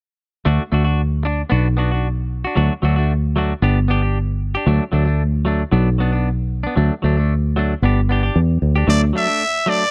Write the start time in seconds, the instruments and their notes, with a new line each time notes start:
0.45 fingered electric bass D2, clean electric guitar A3 D4 F#4
0.72 fingered electric bass D2, clean electric guitar A3 D4 F#4
0.84 clean electric guitar D4 F#4
1.23 clean electric guitar D4, muted clean electric guitar stroke
1.50 fingered electric bass B1, clean electric guitar B3 D4 F#4
1.77 clean electric guitar B3 D4 F#4
1.91 clean electric guitar D4 F#4
2.45 clean electric guitar D4 F#4
2.55 fingered electric bass D2, clean electric guitar F#3 A3 D4 F#4
2.82 fingered electric bass D2, clean electric guitar F#3 A3 D4 F#4
2.96 clean electric guitar A3 D4 F#4
3.36 clean electric guitar F#3 A3 D4 F#4
3.62 fingered electric bass G1, clean electric guitar B3 D4 G4
3.88 clean electric guitar B3 D4 G4
4.02 clean electric guitar D4 G4
4.55 clean electric guitar D4 G4
4.67 fingered electric bass D2, clean electric guitar F#3 A3 D4
4.92 fingered electric bass D2, clean electric guitar F#3 A3 D4
5.05 clean electric guitar A3 D4
5.45 clean electric guitar F#3 A3 D4
5.72 fingered electric bass B1, clean electric guitar F#3 B3 D4
5.98 clean electric guitar F#3 B3 D4
6.12 clean electric guitar B3 D4
6.63 clean electric guitar B3 D4
6.76 fingered electric bass D2, clean electric guitar F#3 A3 D4
7.02 fingered electric bass D2, clean electric guitar F#3 A3 D4
7.17 clean electric guitar A3 D4
7.56 clean electric guitar F#3 A3 D4
7.82 fingered electric bass G1, clean electric guitar B3 D4 G4
8.09 clean electric guitar B3 D4 G4
8.23 clean electric guitar D4 G4
8.36 fingered electric bass E2
8.62 fingered electric bass D2
8.76 clean electric guitar D4 G4
8.87 fingered electric bass D2, clean electric guitar F#3 A3 D4, muted trumpet D5
9.13 clean electric guitar F#3 A3 D4
9.17 muted trumpet E5
9.27 clean electric guitar A3 D4
9.66 clean electric guitar F#3 A3 D4, muted trumpet D5